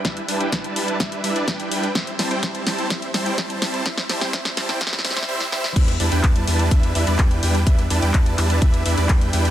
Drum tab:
CC |--------------------------------|--------------------------------|--------------------------------|x-------------------------------|
HH |x-x-o-x-x-x-o-x-x-x-o-x-x-x-o-x-|x-x-o-x-x-x-o-x-x-x-o-x-x-x-o-x-|x-x-o-x-x-x-o-x-x-x-o-x---------|x-x-o-x-x-x-o-x-x-x-o-x-x-x-o-x-|
CP |--------------------------------|--------------------------------|--------------------------------|--------x---------------x-------|
SD |o-------o-------o-------o-------|o---o---o---o---o---o---o---o---|o-o-o-o-o-o-o-o-oooooooo--o-o-o-|--------------------------------|
BD |o-------o-------o-------o-------|o-------o-------o-------o-------|o-------o-------o---------------|o-------o-------o-------o-------|

CC |--------------------------------|
HH |x-x-o-x-x-x-o-x-x-x-o-x-x-x-o-x-|
CP |--------x---x-----------x-------|
SD |--------------------------------|
BD |o-------o-------o-------o-------|